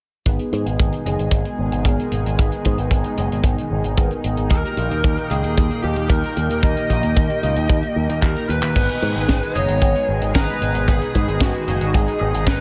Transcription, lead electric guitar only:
4.51 A#4
5.30 G#4
5.83 G4
6.10 A#4
6.63 D#5
8.23 A#4
8.49 B4
9.55 C#5
10.35 B4
10.88 G#4
11.41 F#4
11.94 G#4
12.21 G#4
12.47 B4

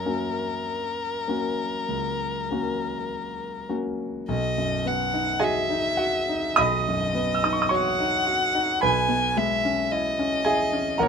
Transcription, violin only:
Already playing: A#4
4.30 D#5
4.87 F#5
5.44 E5
6.62 D#5
7.75 F#5
8.84 G#5
9.38 E5
9.92 D#5
11.02 C#5

